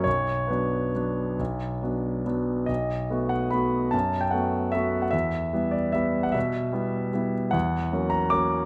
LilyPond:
<<
  \new Staff \with { instrumentName = "Grand piano" } { \time 3/4 \key b \minor \tempo 4 = 146 cis''4 b'2~ | b'2 r4 | dis''4. fis''8 b''4 | a''8. g''16 fis''4 e''8. fis''16 |
e''4. d''8 e''8. fis''16 | e''2~ e''8 r8 | fis''4. ais''8 d'''4 | }
  \new Staff \with { instrumentName = "Grand piano" } { \time 3/4 \key b \minor b,,4 <fis b d'>4 <fis b d'>4 | b,,4 <fis b d'>4 <fis b d'>4 | b,,4 <a b fis'>4 <a b fis'>4 | fis,4 <a b fis'>4 <a b fis'>4 |
e,4 <g b e'>4 <g b e'>4 | b,4 <g b e'>4 <g b e'>4 | e,4 <fis ais cis'>4 <fis ais cis'>4 | }
>>